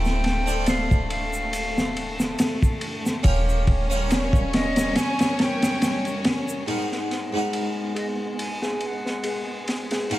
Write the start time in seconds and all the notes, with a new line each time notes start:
Already playing: D1 A3 C4 E4 F4 A4 G5
0.05 snare, shaker
0.24 snare, ride
0.46 C4 D4 F4, shaker
0.52 A4
0.66 F5, snare, ride, shaker
0.91 kick, shaker
1.10 F5, ride
1.33 shaker
1.53 ride, shaker
1.78 snare, shaker
1.97 ride
2.20 snare, shaker
2.39 snare, ride, shaker
2.62 kick, shaker
2.81 ride
3.06 snare, shaker
3.23 D#1 G3 C#4 F4 G4 A#4 C#5, kick, ride, shaker
3.49 shaker
3.67 kick, ride
3.90 G3 C#4 F4, shaker
3.96 A#4
4.11 snare, ride, shaker
4.33 kick, shaker
4.53 D#5, snare, ride
4.76 snare, ride, shaker
4.96 G#5, snare, ride, shaker
5.19 snare, ride, shaker
5.34 G#5
5.39 A5, snare, ride
5.43 G5
5.62 snare, ride, shaker
5.82 snare, ride, shaker
6.05 ride, shaker
6.24 snare, ride
6.49 shaker
6.66 G#2 G#3 B3 D#4 F#4 G#4 A#4 B4, ride
6.92 snare
7.11 snare, ride
7.33 G#2 B3 D#4 G#4
7.37 F#4 A#4
7.53 ride
7.95 G#4 D#5, ride
8.39 G#5, ride
8.62 G#4, snare
8.81 G#5, ride
8.87 F#5
9.06 snare
9.24 G#4, ride
9.68 snare, ride
9.91 G#4, snare, ride
10.10 G#2 B3 D#4 F#4 A#4 F5, ride